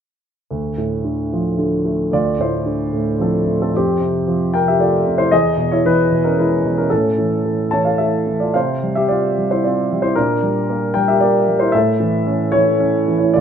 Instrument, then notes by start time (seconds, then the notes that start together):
grand piano
0.51 D2
0.78 A2
1.04 D3
1.33 F3
1.58 D3
1.85 A3
2.12 D2 F4 D5
2.39 A2 E4 C5
2.66 D3
2.93 A2
3.19 F3 C4 A4
3.46 A2
3.62 C4 A4
3.73 F2 C4 G4
4.00 C3
4.28 F3
4.53 C3 A#4 G5
4.68 G4 E5
4.79 A3 F4 D5
5.07 C3
5.18 E4 C5
5.31 E2 G#4 D#5
5.58 B2
5.71 E4 C#5
5.85 E3 E4 B4
6.12 B2
6.24 C#4 A#4
6.38 G#3 E4 B4
6.65 B2
6.78 C#4 A#4
6.90 A2 C#4 A4
7.18 E3
7.45 A3
7.71 E3 C#5 A5
7.85 A4 F5
7.98 A3 A4 E5
8.27 E3
8.40 F4 D5
8.54 C3 C5 F5
8.83 G3
8.95 G4 E5
9.09 C4 F4 D5
9.38 G3
9.51 E4 C5
9.64 C4 F4 D5
9.93 G3
10.02 E4 C5
10.15 A#2 D4 A#4
10.43 G3
10.70 A#3
10.94 G3 A#4 G5
11.08 G4 E5
11.20 A#3 G4 D5
11.49 G3
11.59 E4 C5
11.72 A2 A4 E5
12.00 E3
12.27 C#4
12.52 E3 E4 C#5
12.80 C#4
13.08 E3
13.18 E4 C#5
13.34 D2 F4 D5